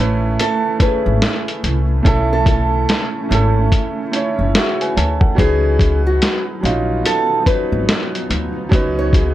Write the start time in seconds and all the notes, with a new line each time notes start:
Already playing: A1 A3 C#4 E4
0.00 E4 B4
0.40 A4, closed hi-hat
0.79 A3 C#4 E4 B4, kick, closed hi-hat
0.83 G#4
1.06 G#1
1.22 snare, closed hi-hat
1.48 closed hi-hat
1.64 C2, closed hi-hat
2.03 B1 A3 C#4 E4, kick, closed hi-hat
2.07 A4
2.33 A4
2.46 A4, kick, closed hi-hat
2.89 snare, closed hi-hat
3.29 G#1 A3 C#4 E4, closed hi-hat
3.34 A4
3.72 kick, closed hi-hat
4.12 A3 C#4 E4, closed hi-hat
4.16 C#5
4.39 F#1
4.55 F#4 G#4 E5, snare, closed hi-hat
4.81 B4 G#5, closed hi-hat
4.96 D2 C#5 A5, closed hi-hat
5.21 A4 F#5, kick
5.35 C#2 F#3 B3 C#4 D#4, kick
5.39 G#4 B4, closed hi-hat
5.79 kick, closed hi-hat
6.07 F#4
6.22 snare, closed hi-hat
6.61 A#1 F#3 C#4 D#4
6.65 F4, closed hi-hat
7.06 A4, closed hi-hat
7.44 F3 C#4 D#4 B4, kick, closed hi-hat
7.49 F#3 B4
7.72 G#1
7.89 snare, closed hi-hat
8.15 closed hi-hat
8.30 D2, closed hi-hat
8.69 C#2 F#3 C#4 D#4, kick, closed hi-hat
8.74 B4
8.99 C#5
9.13 G#4, kick, closed hi-hat